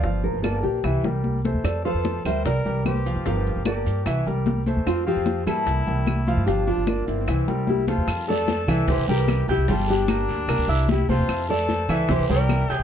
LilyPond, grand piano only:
\new Staff \with { instrumentName = "Grand piano" } { \time 4/4 \key f \major \tempo 4 = 149 <f f' f''>4 <bes bes' d''>4 <e e' e''>8 <g g' bes'>4 <a a' c''>8~ | <a a' c''>8 <f f' f''>4 <g g' bes'>4 <g g' bes'>4 <f f' f''>8 | <f f' f''>4 <bes bes' d''>4 <e e' e''>8 <g g' bes'>4 <a a' c''>8~ | <a a' c''>8 <f f' f''>4 <g bes g'>4 <g bes g'>4 <f f' f''>8 |
<f f' f''>4 <bes bes' d''>4 <e e' e''>8 <g g' bes'>4 <a a' c''>8 | r8 <a a' a''>4 <e e' e''>4 <g g' g''>4 <g' g'' g'''>8 | <g g' g''>4 <bes bes' bes''>4 <bes bes' bes''>8 <e' e'' e'''>4 <c' c'' c'''>8~ | <c' c'' c'''>8 <a a' a''>4 <e e' e''>4 <g g' g''>4 <g' g'' g'''>8 | }